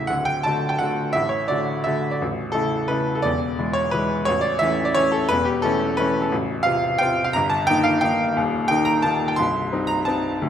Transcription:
Already playing: A0 A1 C#3 A3 E4 E5 G5
0.07 D1 D2 F#5
0.25 G5
0.43 D3 A3 F#4 A5
0.69 G5
0.79 D3 A3 F#4 F#5
1.13 A1 A2 E5
1.29 C#5
1.48 D3 A3 F#4 D5
1.84 D3 A3 F#4 E5
2.11 D5
2.21 A0 A1
2.52 C#3 A3 E4 A4
2.88 C#3 A3 E4 B4
3.15 A4
3.22 E1 E2 D5
3.59 E3 G#3 E4
3.73 C#5
3.91 E3 G#3 E4 B4
4.25 A0 A1 C#5
4.41 D5
4.59 E3 A3 C#4 E5
4.85 D5
4.95 E3 A3 C#4 C#5
5.12 A4
5.29 E1 E2 B4
5.45 G4
5.62 E3 A3 C#4 A4
5.97 E3 A3 C#4 B4
6.22 A4
6.31 A0 A1
6.63 C3 C4 F4 F5
6.98 C3 C4 F4 G5
7.24 F5
7.33 G1 G2 A#5
7.50 A5
7.67 D#3 A#3 D#4 G5
7.84 F5
8.01 D#3 A#3 D#4 G5
8.37 D#1 D#2
8.68 D#3 A#3 D#4 G5
8.85 A#5
9.02 D#3 A#3 D#4 A5
9.28 G5
9.36 C1 C2 C6
9.72 G3 C4 D#4
9.87 A#5
10.05 G3 C4 D#4 A5
10.42 D1 D2

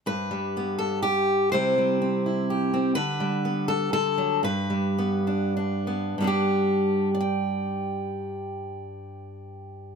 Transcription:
0.06 G2 B4
0.31 G3
0.57 B3
0.78 A4
1.02 G4
1.52 C3 G3 C4 E4 C5
1.78 G3
2.02 C4
2.26 E4
2.50 G4
2.74 C4
2.95 D3 B4
3.20 G3
3.45 B3
3.68 A4
3.93 D3 A4
4.18 F#3
4.43 G2 B4
4.70 G3
4.98 B3
5.27 D4
5.57 D4
5.87 B3
6.18 G2 G3
6.22 B3 D4
6.27 G4
7.15 D5
7.21 G5

